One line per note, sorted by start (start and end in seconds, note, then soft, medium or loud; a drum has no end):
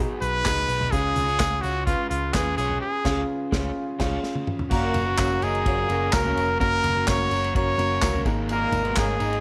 0.00 0.95 B2 medium
0.00 0.43 F#3 medium
0.00 0.45 B3 medium
0.00 0.45 D#4 medium
0.00 0.46 D#4 medium
0.00 0.46 F#4 medium
0.00 0.37 G#4 loud
0.00 0.46 B4 medium
0.00 0.95 B4 medium
0.21 0.41 B1 medium
0.21 0.93 B4 loud
0.21 closed hi-hat medium
0.21 tambourine soft
0.44 0.65 C#2 medium
0.44 0.67 F#3 medium
0.44 0.68 B3 medium
0.44 0.84 D#4 medium
0.44 0.69 D#4 medium
0.44 0.84 F#4 medium
0.44 0.84 G#4 medium
0.44 0.70 B4 medium
0.44 kick loud
0.44 snare medium
0.44 clap medium
0.44 closed hi-hat loud
0.44 tambourine loud
0.68 0.88 B1 medium
0.68 0.92 F#3 medium
0.68 0.93 B3 medium
0.68 0.93 D#4 medium
0.68 0.94 B4 medium
0.68 closed hi-hat medium
0.68 tambourine soft
0.81 floor tom medium
0.91 1.12 C#2 loud
0.91 1.28 C#3 medium
0.91 1.60 C#3 medium
0.91 1.28 G#3 medium
0.91 1.31 C#4 medium
0.91 1.28 C#4 medium
0.91 1.31 F4 medium
0.91 1.27 F4 medium
0.91 1.63 G#4 loud
0.91 1.31 G#4 medium
0.91 1.25 C#5 medium
0.91 kick loud
0.91 closed hi-hat medium
0.91 tambourine soft
1.16 1.36 C#2 medium
1.16 closed hi-hat medium
1.16 floor tom medium
1.16 tambourine soft
1.26 1.62 C#4 soft
1.26 1.63 F4 soft
1.26 1.63 C#5 medium
1.26 closed hi-hat medium
1.39 1.59 C#2 medium
1.39 1.78 C#4 medium
1.39 1.78 F4 medium
1.39 1.78 G#4 medium
1.39 kick loud
1.39 snare loud
1.39 clap medium
1.39 closed hi-hat medium
1.39 tambourine medium
1.62 1.93 C#2 loud
1.62 2.32 G#3 medium
1.62 2.34 C#4 medium
1.62 2.34 F4 medium
1.62 1.85 F#4 medium
1.62 2.36 C#5 medium
1.62 closed hi-hat medium
1.62 tambourine soft
1.86 2.25 C#4 medium
1.86 2.09 F4 medium
1.86 2.26 F4 medium
1.86 2.26 B4 medium
1.86 kick loud
1.86 closed hi-hat medium
2.10 2.30 C#2 medium
2.10 2.35 F4 medium
2.10 closed hi-hat medium
2.33 2.54 D#2 medium
2.33 2.56 G#3 medium
2.33 2.73 C#4 medium
2.33 2.57 C#4 medium
2.33 2.73 F4 medium
2.33 2.58 F4 medium
2.33 2.57 G#4 medium
2.33 2.73 B4 medium
2.33 2.59 C#5 medium
2.33 kick loud
2.33 snare loud
2.33 clap medium
2.33 closed hi-hat loud
2.33 tambourine medium
2.57 2.77 B1 medium
2.57 2.81 G#3 medium
2.57 2.82 C#4 medium
2.57 2.83 F4 medium
2.57 2.80 G#4 medium
2.57 2.83 C#5 medium
2.57 closed hi-hat medium
2.57 tambourine soft
2.69 floor tom medium
2.81 3.26 G#4 medium
3.05 3.21 C#2 medium
3.05 3.22 C#3 loud
3.05 3.21 C#4 medium
3.05 3.23 C#4 medium
3.05 3.21 F4 loud
3.05 3.22 F4 medium
3.05 3.21 C#5 medium
3.05 kick loud
3.05 snare loud
3.05 crash medium
3.11 3.25 G#4 medium
3.52 3.69 C#2 loud
3.52 3.68 G#3 medium
3.52 3.69 C#4 medium
3.52 3.69 F4 loud
3.52 3.69 F4 medium
3.52 3.69 G#4 medium
3.52 3.70 C#5 medium
3.52 kick loud
3.52 snare loud
3.99 4.16 C#2 medium
3.99 4.16 G#3 medium
3.99 4.16 C#4 medium
3.99 4.16 F4 medium
3.99 4.17 F4 loud
3.99 4.16 G#4 medium
3.99 4.18 C#5 loud
3.99 kick loud
3.99 snare loud
3.99 crash medium
4.23 snare medium
4.35 high tom medium
4.47 mid tom medium
4.59 floor tom medium
4.70 4.90 F#1 medium
4.70 5.04 A#2 loud
4.70 5.06 F#3 medium
4.70 5.04 A#3 loud
4.70 5.09 A#3 medium
4.70 5.06 C#4 medium
4.70 5.09 C#4 medium
4.70 5.45 F#4 medium
4.70 5.09 F#4 medium
4.70 5.06 F#4 medium
4.70 5.09 A#4 loud
4.70 5.05 A#4 medium
4.70 kick loud
4.70 crash loud
4.70 tambourine medium
4.94 5.14 F#1 medium
4.94 floor tom medium
4.94 ride medium
4.94 tambourine medium
5.06 5.16 B2 medium
5.06 5.40 F#3 medium
5.06 5.16 B3 medium
5.06 5.41 C#4 medium
5.06 5.42 F#4 medium
5.06 5.42 A#4 medium
5.18 5.38 F#1 medium
5.18 5.37 C#3 medium
5.18 5.57 A#3 medium
5.18 5.37 C#4 medium
5.18 5.57 C#4 medium
5.18 5.57 F#4 medium
5.18 5.57 C#5 medium
5.18 kick loud
5.18 snare loud
5.18 clap medium
5.18 ride medium
5.18 tambourine medium
5.42 5.61 F#1 loud
5.42 5.61 D#3 medium
5.42 5.88 F#3 medium
5.42 5.89 C#4 medium
5.42 5.61 D#4 medium
5.42 5.90 F#4 medium
5.42 6.15 G#4 medium
5.42 5.92 A#4 medium
5.42 ride medium
5.42 tambourine soft
5.55 ride soft
5.65 5.85 F#1 loud
5.65 6.10 A#2 medium
5.65 6.10 A#3 loud
5.65 5.85 A#3 medium
5.65 5.85 C#4 medium
5.65 5.85 F#4 medium
5.65 5.85 C#5 medium
5.65 kick loud
5.65 ride medium
5.65 tambourine soft
5.89 6.09 F#1 medium
5.89 6.25 F#3 medium
5.89 6.08 A#3 medium
5.89 6.08 C#4 medium
5.89 6.25 C#4 medium
5.89 6.09 F#4 medium
5.89 6.25 F#4 medium
5.89 6.09 A#4 medium
5.89 6.23 A#4 medium
5.89 ride medium
5.89 tambourine soft
6.13 6.33 C#2 medium
6.13 6.46 C#3 medium
6.13 6.51 A#3 medium
6.13 6.46 C#4 loud
6.13 6.51 C#4 medium
6.13 6.51 F#4 medium
6.13 6.60 A#4 medium
6.13 6.52 A#4 medium
6.13 kick loud
6.13 snare loud
6.13 clap medium
6.13 ride medium
6.13 tambourine loud
6.24 6.59 C#4 medium
6.24 6.60 F#4 medium
6.24 6.60 A#4 medium
6.24 floor tom medium
6.37 6.56 F1 medium
6.37 ride medium
6.37 tambourine soft
6.59 6.80 F#1 loud
6.59 6.95 F#3 medium
6.59 6.98 A#3 loud
6.59 6.98 C#4 medium
6.59 6.96 C#4 medium
6.59 6.98 F#4 medium
6.59 6.95 F#4 medium
6.59 6.98 A#4 loud
6.59 7.10 A#4 loud
6.59 6.94 A#4 loud
6.59 kick loud
6.59 ride medium
6.59 tambourine medium
6.84 7.03 F#1 medium
6.84 floor tom medium
6.84 ride medium
6.84 tambourine medium
6.95 7.29 F#3 medium
6.95 7.30 C#4 medium
6.95 7.31 F#4 medium
6.95 7.31 A#4 medium
7.07 7.27 F#1 loud
7.07 7.46 A#3 medium
7.07 7.45 C#4 medium
7.07 7.45 F#4 medium
7.07 7.46 A#4 medium
7.07 7.55 C#5 loud
7.07 kick loud
7.07 snare loud
7.07 clap medium
7.07 ride medium
7.07 tambourine medium
7.31 7.50 F#1 loud
7.31 7.76 F#3 medium
7.31 7.78 C#4 medium
7.31 7.79 F#4 loud
7.31 7.81 A#4 medium
7.31 ride soft
7.31 tambourine soft
7.44 ride medium
7.54 7.74 F#1 loud
7.54 7.74 A#3 medium
7.54 7.74 C#4 medium
7.54 7.74 F#4 medium
7.54 7.74 A#4 medium
7.54 8.23 C#5 loud
7.54 kick loud
7.54 ride medium
7.77 7.97 F#1 loud
7.77 8.13 F#3 medium
7.77 7.97 A#3 medium
7.77 7.97 C#4 medium
7.77 8.14 C#4 medium
7.77 7.97 F#4 medium
7.77 8.14 F#4 medium
7.77 7.97 A#4 medium
7.77 8.12 A#4 medium
7.77 ride medium
8.02 8.22 C#2 medium
8.02 8.24 A#3 medium
8.02 8.25 C#4 medium
8.02 8.26 F#4 medium
8.02 8.24 A#4 medium
8.02 kick loud
8.02 snare loud
8.02 clap medium
8.02 ride medium
8.02 tambourine loud
8.13 8.25 C#4 medium
8.13 8.26 F#4 medium
8.13 8.25 A#4 medium
8.13 floor tom medium
8.24 8.64 G#1 medium
8.24 8.84 G#2 medium
8.24 8.93 G#2 medium
8.24 8.84 D#3 medium
8.24 8.85 G#3 medium
8.24 8.83 A#3 medium
8.24 8.83 D#4 medium
8.24 8.84 D#4 medium
8.24 8.83 G#4 medium
8.24 8.84 G#4 medium
8.24 8.83 A#4 loud
8.24 8.83 A#4 medium
8.24 kick loud
8.24 ride medium
8.24 tambourine medium
8.49 8.82 A#2 loud
8.49 8.82 A#3 loud
8.49 8.99 A#4 medium
8.49 ride medium
8.49 tambourine medium
8.72 8.92 G#1 loud
8.72 floor tom medium
8.72 ride medium
8.72 tambourine medium
8.84 9.18 G#2 medium
8.84 8.94 B2 medium
8.84 9.19 D#3 medium
8.84 9.19 G#3 medium
8.84 8.94 B3 medium
8.84 9.20 D#4 medium
8.84 9.20 G#4 medium
8.84 9.20 A#4 medium
8.84 ride soft
8.96 9.16 G#1 medium
8.96 9.16 C#3 medium
8.96 9.35 A#3 medium
8.96 9.16 C#4 medium
8.96 9.35 D#4 medium
8.96 9.35 G#4 medium
8.96 9.40 G#4 medium
8.96 9.35 A#4 medium
8.96 kick loud
8.96 snare loud
8.96 clap medium
8.96 ride medium
8.96 tambourine medium
9.19 9.40 G#1 loud
9.19 9.40 G#2 medium
9.19 9.40 D#3 medium
9.19 9.40 G#3 medium
9.19 9.40 D#4 medium
9.19 9.40 G#4 loud
9.19 9.40 A#4 medium
9.19 ride medium
9.19 tambourine soft
9.33 ride medium